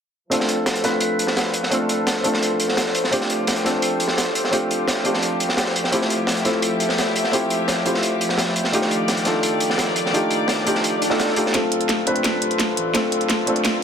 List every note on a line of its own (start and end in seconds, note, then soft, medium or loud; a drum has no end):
0.30 3.09 F3 medium
0.30 0.81 A3 medium
0.30 0.82 C4 medium
0.30 3.09 D4 medium
0.30 0.82 D4 medium
0.30 0.82 F4 medium
0.30 0.82 A4 medium
0.30 5.89 C5 medium
0.30 closed hi-hat medium
0.40 snare soft
0.49 closed hi-hat medium
0.66 snare loud
0.66 closed hi-hat medium
0.75 closed hi-hat soft
0.83 0.89 A3 medium
0.83 0.89 C4 medium
0.83 0.89 D4 medium
0.83 0.89 F4 medium
0.83 0.90 B4 medium
0.83 snare soft
0.83 closed hi-hat medium
1.01 closed hi-hat medium
1.19 closed hi-hat medium
1.27 snare soft
1.37 snare loud
1.37 closed hi-hat medium
1.54 closed hi-hat medium
1.63 snare soft
1.70 2.22 A3 medium
1.70 2.22 C4 medium
1.70 2.22 D4 medium
1.70 2.23 F4 medium
1.70 2.23 A4 medium
1.70 closed hi-hat medium
1.89 closed hi-hat medium
2.07 snare loud
2.07 closed hi-hat medium
2.23 3.09 A3 medium
2.23 3.10 C4 medium
2.23 3.10 D4 medium
2.23 3.10 F4 medium
2.23 3.11 A4 medium
2.23 closed hi-hat medium
2.34 snare medium
2.43 closed hi-hat medium
2.60 closed hi-hat medium
2.68 snare soft
2.77 snare loud
2.77 closed hi-hat medium
2.86 snare soft
2.95 closed hi-hat medium
3.04 snare soft
3.11 11.50 F3 medium
3.11 3.62 A3 medium
3.11 5.90 A3 medium
3.11 3.62 C4 medium
3.11 3.63 D4 medium
3.11 3.63 F4 medium
3.11 11.50 G4 medium
3.11 3.63 G4 loud
3.11 closed hi-hat medium
3.21 snare soft
3.30 closed hi-hat medium
3.47 snare loud
3.47 closed hi-hat medium
3.56 closed hi-hat soft
3.64 3.70 A3 medium
3.64 3.70 C4 medium
3.64 3.70 D4 medium
3.64 3.70 F4 medium
3.64 3.70 A4 medium
3.64 snare soft
3.64 closed hi-hat medium
3.82 closed hi-hat medium
4.00 closed hi-hat medium
4.08 snare medium
4.18 snare loud
4.18 closed hi-hat medium
4.35 closed hi-hat medium
4.44 snare soft
4.51 5.02 A3 medium
4.51 5.02 C4 medium
4.51 5.03 D4 medium
4.51 5.03 F4 medium
4.51 5.03 G4 medium
4.51 closed hi-hat medium
4.71 closed hi-hat medium
4.88 snare loud
4.88 closed hi-hat medium
5.04 5.90 A3 medium
5.04 5.90 C4 medium
5.04 5.91 D4 medium
5.04 5.91 F4 medium
5.04 5.91 G4 medium
5.04 closed hi-hat medium
5.14 snare soft
5.23 closed hi-hat medium
5.40 closed hi-hat medium
5.49 snare soft
5.57 snare loud
5.57 closed hi-hat medium
5.66 snare soft
5.76 closed hi-hat medium
5.84 snare soft
5.91 6.43 A3 medium
5.91 11.50 A3 medium
5.91 6.43 C4 medium
5.91 6.43 E4 medium
5.91 6.44 F4 medium
5.91 6.44 G4 loud
5.91 8.71 E5 medium
5.91 closed hi-hat medium
6.02 snare medium
6.10 closed hi-hat medium
6.27 snare loud
6.27 closed hi-hat medium
6.37 closed hi-hat soft
6.45 6.50 A3 medium
6.45 6.50 C4 medium
6.45 6.51 E4 medium
6.45 6.51 F4 medium
6.45 6.51 A4 medium
6.45 snare soft
6.45 closed hi-hat medium
6.62 closed hi-hat medium
6.80 closed hi-hat medium
6.89 snare medium
6.98 snare loud
6.98 closed hi-hat medium
7.16 closed hi-hat medium
7.24 snare soft
7.32 7.83 A3 medium
7.32 7.83 C4 medium
7.32 7.84 E4 medium
7.32 7.84 F4 medium
7.32 7.84 G4 medium
7.32 closed hi-hat medium
7.50 closed hi-hat medium
7.68 snare loud
7.68 closed hi-hat loud
7.84 8.71 A3 medium
7.84 8.71 C4 medium
7.84 8.71 E4 medium
7.84 8.72 F4 medium
7.84 8.72 G4 medium
7.84 closed hi-hat medium
7.94 snare soft
8.03 closed hi-hat medium
8.21 closed hi-hat medium
8.29 snare soft
8.38 snare loud
8.38 closed hi-hat medium
8.46 snare soft
8.56 closed hi-hat medium
8.64 snare soft
8.72 11.51 D#3 medium
8.72 9.23 A3 medium
8.72 9.24 D4 medium
8.72 9.24 D#4 medium
8.72 9.24 F4 medium
8.72 9.25 G4 loud
8.72 11.51 D5 medium
8.72 closed hi-hat medium
8.82 snare soft
8.91 closed hi-hat medium
9.08 snare loud
9.08 closed hi-hat medium
9.17 closed hi-hat soft
9.25 9.31 A3 medium
9.25 9.31 D4 medium
9.25 9.31 D#4 medium
9.25 9.31 F4 medium
9.25 9.32 A4 medium
9.25 snare soft
9.25 closed hi-hat medium
9.43 closed hi-hat medium
9.60 closed hi-hat medium
9.70 snare medium
9.78 snare loud
9.78 closed hi-hat medium
9.96 closed hi-hat medium
10.06 snare soft
10.12 10.63 A3 medium
10.12 10.64 D4 medium
10.12 10.64 D#4 medium
10.12 10.65 F4 medium
10.12 10.65 G4 medium
10.12 closed hi-hat medium
10.31 closed hi-hat medium
10.48 snare loud
10.48 closed hi-hat medium
10.65 11.08 A3 medium
10.65 11.08 D4 medium
10.65 11.08 D#4 medium
10.65 11.09 F4 medium
10.65 11.09 G4 medium
10.65 closed hi-hat medium
10.75 snare soft
10.84 closed hi-hat medium
10.84 swell medium
11.02 closed hi-hat medium
11.09 11.34 A3 loud
11.09 11.34 D4 medium
11.09 11.34 D#4 medium
11.09 11.35 F4 medium
11.09 11.35 A4 loud
11.09 snare soft
11.20 snare loud
11.20 closed hi-hat medium
11.28 snare soft
11.36 11.51 A3 medium
11.36 11.52 D4 medium
11.36 11.52 D#4 medium
11.36 11.52 F4 medium
11.36 11.52 G4 medium
11.36 closed hi-hat medium
11.46 snare soft
11.53 12.14 D1 loud
11.53 12.04 A3 medium
11.53 12.04 C4 medium
11.53 12.05 D4 medium
11.53 13.83 F4 medium
11.53 12.05 F4 medium
11.53 12.05 A4 loud
11.53 13.83 D5 medium
11.53 13.83 C6 medium
11.53 snare soft
11.53 closed hi-hat loud
11.53 riser medium
11.72 closed hi-hat medium
11.81 closed hi-hat soft
11.89 snare soft
11.89 closed hi-hat medium
12.06 12.12 A3 medium
12.06 12.12 C4 medium
12.06 12.12 D4 medium
12.06 12.12 F4 medium
12.06 12.12 B4 medium
12.06 closed hi-hat medium
12.16 12.40 D1 loud
12.16 closed hi-hat soft
12.24 snare soft
12.24 closed hi-hat medium
12.42 12.76 D1 medium
12.42 closed hi-hat medium
12.51 closed hi-hat soft
12.60 snare soft
12.60 closed hi-hat medium
12.77 12.93 A1 loud
12.77 closed hi-hat medium
12.93 13.55 D1 medium
12.93 13.44 A3 medium
12.93 13.45 C4 medium
12.93 13.45 D4 medium
12.93 13.45 F4 medium
12.93 13.46 A4 loud
12.93 snare medium
12.93 closed hi-hat loud
13.12 closed hi-hat medium
13.21 closed hi-hat soft
13.30 snare medium
13.30 closed hi-hat medium
13.46 13.83 A3 medium
13.46 13.83 C4 medium
13.46 13.83 D4 medium
13.46 13.83 F4 medium
13.46 13.83 A4 medium
13.46 closed hi-hat medium
13.56 13.64 D1 loud
13.56 closed hi-hat soft
13.65 13.83 D1 loud
13.65 snare medium
13.65 closed hi-hat medium